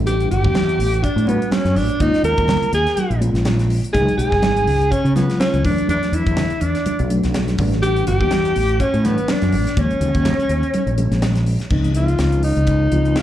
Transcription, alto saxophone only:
0, 0, Header, 1, 2, 480
1, 0, Start_track
1, 0, Tempo, 485437
1, 61, Time_signature, 4, 2, 24, 8
1, 13075, End_track
2, 0, Start_track
2, 0, Title_t, "Alto saxophone"
2, 0, Program_c, 0, 65
2, 63, Note_on_c, 0, 67, 89
2, 285, Note_off_c, 0, 67, 0
2, 305, Note_on_c, 0, 67, 99
2, 1020, Note_on_c, 0, 62, 84
2, 1034, Note_off_c, 0, 67, 0
2, 1259, Note_on_c, 0, 59, 72
2, 1274, Note_off_c, 0, 62, 0
2, 1501, Note_on_c, 0, 61, 86
2, 1516, Note_off_c, 0, 59, 0
2, 1742, Note_on_c, 0, 62, 84
2, 1757, Note_off_c, 0, 61, 0
2, 1994, Note_on_c, 0, 63, 98
2, 2009, Note_off_c, 0, 62, 0
2, 2215, Note_off_c, 0, 63, 0
2, 2221, Note_on_c, 0, 70, 102
2, 2667, Note_off_c, 0, 70, 0
2, 2709, Note_on_c, 0, 68, 87
2, 3151, Note_off_c, 0, 68, 0
2, 3886, Note_on_c, 0, 68, 106
2, 4115, Note_off_c, 0, 68, 0
2, 4127, Note_on_c, 0, 68, 100
2, 4856, Note_on_c, 0, 61, 90
2, 4871, Note_off_c, 0, 68, 0
2, 5093, Note_off_c, 0, 61, 0
2, 5099, Note_on_c, 0, 59, 69
2, 5322, Note_off_c, 0, 59, 0
2, 5336, Note_on_c, 0, 61, 81
2, 5561, Note_off_c, 0, 61, 0
2, 5588, Note_on_c, 0, 62, 85
2, 5807, Note_off_c, 0, 62, 0
2, 5828, Note_on_c, 0, 62, 90
2, 6079, Note_on_c, 0, 64, 92
2, 6094, Note_off_c, 0, 62, 0
2, 6544, Note_on_c, 0, 62, 80
2, 6559, Note_off_c, 0, 64, 0
2, 7021, Note_off_c, 0, 62, 0
2, 7733, Note_on_c, 0, 67, 115
2, 7958, Note_off_c, 0, 67, 0
2, 7980, Note_on_c, 0, 67, 111
2, 8703, Note_on_c, 0, 61, 96
2, 8718, Note_off_c, 0, 67, 0
2, 8951, Note_on_c, 0, 59, 80
2, 8966, Note_off_c, 0, 61, 0
2, 9194, Note_on_c, 0, 62, 85
2, 9209, Note_off_c, 0, 59, 0
2, 9668, Note_on_c, 0, 61, 85
2, 9683, Note_off_c, 0, 62, 0
2, 11102, Note_off_c, 0, 61, 0
2, 11827, Note_on_c, 0, 65, 77
2, 12269, Note_off_c, 0, 65, 0
2, 12297, Note_on_c, 0, 63, 86
2, 13037, Note_on_c, 0, 65, 75
2, 13052, Note_off_c, 0, 63, 0
2, 13075, Note_off_c, 0, 65, 0
2, 13075, End_track
0, 0, End_of_file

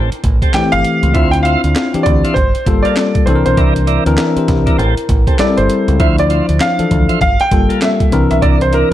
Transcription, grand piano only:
0, 0, Header, 1, 2, 480
1, 0, Start_track
1, 0, Key_signature, -1, "minor"
1, 0, Tempo, 606061
1, 909, Time_signature, 4, 2, 24, 8
1, 7074, End_track
2, 0, Start_track
2, 0, Title_t, "Grand piano"
2, 0, Program_c, 0, 0
2, 431, Note_on_c, 0, 79, 100
2, 570, Note_on_c, 0, 77, 118
2, 581, Note_off_c, 0, 79, 0
2, 903, Note_on_c, 0, 76, 98
2, 917, Note_off_c, 0, 77, 0
2, 1041, Note_on_c, 0, 79, 101
2, 1042, Note_off_c, 0, 76, 0
2, 1080, Note_off_c, 0, 79, 0
2, 1130, Note_on_c, 0, 77, 93
2, 1588, Note_off_c, 0, 77, 0
2, 1609, Note_on_c, 0, 74, 91
2, 1842, Note_off_c, 0, 74, 0
2, 1853, Note_on_c, 0, 72, 92
2, 2238, Note_on_c, 0, 74, 86
2, 2259, Note_off_c, 0, 72, 0
2, 2580, Note_on_c, 0, 72, 75
2, 2590, Note_off_c, 0, 74, 0
2, 2725, Note_off_c, 0, 72, 0
2, 2737, Note_on_c, 0, 72, 87
2, 3184, Note_off_c, 0, 72, 0
2, 4275, Note_on_c, 0, 74, 85
2, 4415, Note_on_c, 0, 72, 83
2, 4423, Note_off_c, 0, 74, 0
2, 4752, Note_on_c, 0, 76, 89
2, 4759, Note_off_c, 0, 72, 0
2, 4901, Note_off_c, 0, 76, 0
2, 4905, Note_on_c, 0, 74, 87
2, 5236, Note_on_c, 0, 77, 92
2, 5244, Note_off_c, 0, 74, 0
2, 5702, Note_off_c, 0, 77, 0
2, 5714, Note_on_c, 0, 77, 98
2, 5862, Note_off_c, 0, 77, 0
2, 5866, Note_on_c, 0, 79, 114
2, 6203, Note_on_c, 0, 76, 87
2, 6204, Note_off_c, 0, 79, 0
2, 6568, Note_off_c, 0, 76, 0
2, 6580, Note_on_c, 0, 76, 88
2, 6670, Note_on_c, 0, 74, 90
2, 6674, Note_off_c, 0, 76, 0
2, 6806, Note_off_c, 0, 74, 0
2, 6825, Note_on_c, 0, 72, 89
2, 6908, Note_off_c, 0, 72, 0
2, 6924, Note_on_c, 0, 70, 90
2, 7074, Note_off_c, 0, 70, 0
2, 7074, End_track
0, 0, End_of_file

